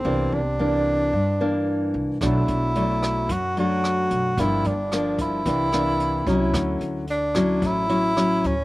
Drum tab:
HH |--------|xxxxxxxx|xxxxxxxx|xxxxxxxx|
SD |--------|r--r--r-|--r--r--|r--r--r-|
BD |--------|o---o---|o--oo--o|o---o---|